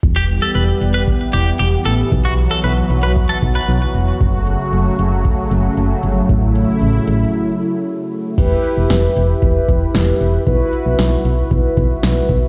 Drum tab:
CC |--------|--------|--------|--------|
HH |xxxxxxxx|xxxxxxxx|xxxxxxxx|xxxx----|
SD |--------|--------|--------|--------|
BD |o---o---|o---oo--|o---o---|o-------|

CC |x-------|--------|
HH |xxxxxxxx|xxxxxxxx|
SD |--o---o-|--o---o-|
BD |o---oo--|o---oo-o|